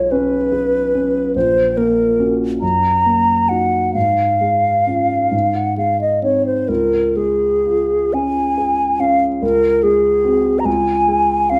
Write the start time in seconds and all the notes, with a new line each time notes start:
Already playing: B1 G#3 F4 C#5
0.11 C#4 B4
0.52 G#4
0.95 C#4
1.36 A#1 C5
1.77 A#3 A#4
2.20 C#4 F#4
2.61 F#2 A#5
3.06 A#3
3.49 D#4 F#4 F#5
3.94 G#2 F5
4.41 G#3
4.87 C#4 F4
5.31 G#2
5.56 F#5
5.77 G#3 F5
6.01 D#5
6.22 C4 D#4 C#5
6.46 C5
6.68 C#2 A#4
7.17 G#3 G#4
7.66 F4
8.14 C#4 G#5
8.58 G#4
9.00 C#4 F5
9.42 C#2 A#4
9.83 G#3 G#4
10.24 C4 F#4
10.59 A#5
10.65 C#2 G#5
11.08 G#3
11.50 C#4 F4 F5